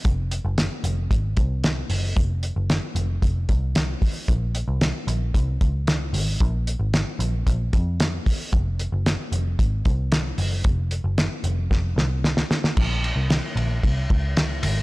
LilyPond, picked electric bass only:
\new Staff \with { instrumentName = "Picked electric bass" } { \clef bass \time 4/4 \key bes \minor \tempo 4 = 113 f,,8. ges,,8 r16 f,,8 aes,,8 c,4 ges,,8 | f,,8. ges,,8 r16 f,,8 f,,8 c,4 r8 | bes,,8. c,8 r16 bes,,8 c,8 des,4 aes,,8 | bes,,8. aes,,8 r16 bes,,8 bes,,8 f,4 r8 |
f,,8. ges,,8 r16 f,,8 aes,,8 c,4 ges,,8 | f,,8. ges,,8 r16 f,,8 f,,8 c,4 r8 | bes,,8. c,8 r16 bes,,8 c,8 des,4 aes,,8 | }